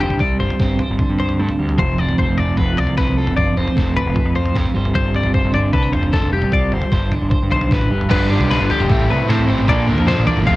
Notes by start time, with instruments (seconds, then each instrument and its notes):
Already playing: clean electric guitar D3 G3 C4 F4
0.00 clean electric guitar G4 C5
0.10 picked electric bass C2, floor tom, mid tom
0.19 clean electric guitar G3 D5, kick, floor tom
0.40 picked electric bass G1, clean electric guitar F4 C5, floor tom
0.50 floor tom
0.60 picked electric bass G1, clean electric guitar C4, kick, snare
0.79 clean electric guitar C5, floor tom, mid tom
0.90 picked electric bass G1
0.99 clean electric guitar D3, kick, floor tom, mid tom
1.10 picked electric bass G2
1.19 clean electric guitar C5, floor tom
1.29 floor tom
1.39 picked electric bass G2, clean electric guitar A3
1.49 floor tom, mid tom
1.59 picked electric bass D2, clean electric guitar G3
1.69 floor tom
1.78 picked electric bass F1, clean electric guitar F3 C5, kick, floor tom
1.98 clean electric guitar C4 D5, floor tom
2.09 picked electric bass F1, floor tom
2.18 clean electric guitar A3 C5, kick
2.29 picked electric bass F1
2.38 clean electric guitar F4 D5, floor tom, mid tom
2.57 picked electric bass F1, clean electric guitar F3 B4, kick, floor tom
2.77 picked electric bass C2, clean electric guitar F4 D5, floor tom
2.87 floor tom
2.97 clean electric guitar C4 B4, kick, snare
3.08 picked electric bass C2, floor tom
3.17 clean electric guitar F4 A4
3.27 picked electric bass G1, floor tom, mid tom
3.37 clean electric guitar F3 D5, kick, floor tom
3.57 picked electric bass F1, clean electric guitar C4 C5, floor tom
3.67 floor tom
3.76 picked electric bass F1, clean electric guitar A3, kick, snare
3.97 clean electric guitar F4 B4, floor tom, mid tom
4.06 picked electric bass F1
4.14 clean electric guitar F3, kick, floor tom, mid tom
4.25 picked electric bass F2
4.35 clean electric guitar F4 C5, floor tom
4.45 floor tom
4.54 picked electric bass F2, clean electric guitar C4, kick, snare
4.65 floor tom, mid tom
4.74 picked electric bass G1, clean electric guitar G3 C4 F4 C5
4.85 floor tom
4.95 picked electric bass G1, clean electric guitar F4 C5, kick, floor tom
5.14 clean electric guitar C4 D5, floor tom
5.23 picked electric bass G1, floor tom
5.33 clean electric guitar C5, kick
5.44 picked electric bass G1
5.52 clean electric guitar D3 D5, floor tom, mid tom
5.73 picked electric bass C2, clean electric guitar A4 B4, kick, floor tom
5.83 clean electric guitar C5
5.93 picked electric bass F1, clean electric guitar F4 C5, floor tom
6.03 floor tom
6.13 clean electric guitar A4 C5, kick, snare
6.22 picked electric bass F1, floor tom
6.32 clean electric guitar G3 G4
6.42 picked electric bass C2, floor tom, mid tom
6.52 clean electric guitar F4 D5, kick, floor tom
6.72 picked electric bass G1, clean electric guitar C5, floor tom
6.82 floor tom
6.92 picked electric bass G1, clean electric guitar C5, kick, snare
7.11 clean electric guitar D3, floor tom, mid tom
7.22 picked electric bass G1
7.30 clean electric guitar C5, kick, floor tom, mid tom
7.43 picked electric bass G2
7.50 picked electric bass B1, clean electric guitar F4 C5, floor tom
7.61 floor tom
7.71 picked electric bass A1, clean electric guitar B4 C5, kick, snare
7.81 floor tom, mid tom
7.90 picked electric bass G1, clean electric guitar G3
8.01 floor tom
8.10 picked electric bass G1, overdriven electric guitar G2 D3 F3 B3 D4, clean electric guitar G3 D4 F4 B4, kick, floor tom, crash
8.30 overdriven electric guitar F3 B3 D4, clean electric guitar D4 G4, mid tom
8.39 picked electric bass B1, floor tom
8.49 overdriven electric guitar G2 D3 F3 B3 D4, clean electric guitar F4 B4, snare
8.60 picked electric bass G1
8.69 overdriven electric guitar F3 B3 D4, clean electric guitar G4 A4, floor tom
8.80 picked electric bass F1, clean electric guitar C5, mid tom
8.89 picked electric bass A1, overdriven electric guitar A2 E3 A3 C4 E4, clean electric guitar A2, kick
9.00 floor tom
9.10 picked electric bass C2, clean electric guitar A3 B4
9.28 picked electric bass A2, overdriven electric guitar E3 A3 C4 E4, clean electric guitar C4 C5, snare
9.39 floor tom
9.47 picked electric bass A1, overdriven electric guitar A3 C4 E4, clean electric guitar C5, mid tom
9.58 mid tom
9.68 picked electric bass A#1, overdriven electric guitar A#2 F3 A#3 D4, clean electric guitar A#2 A#3 D4 F4 A4 D5, kick, floor tom
9.87 overdriven electric guitar F3 A#3 D4, clean electric guitar A#3 A#4, mid tom
9.98 picked electric bass F2, floor tom
10.07 overdriven electric guitar A#2 F3 A#3 D4, clean electric guitar D3 C5, snare
10.18 picked electric bass A1
10.26 clean electric guitar E3 D5, overdriven electric guitar F3 A#3 D4, floor tom
10.37 picked electric bass G1, mid tom
10.46 picked electric bass F1, overdriven electric guitar F2 C3 F3 A3 C4, clean electric guitar F3 F5, kick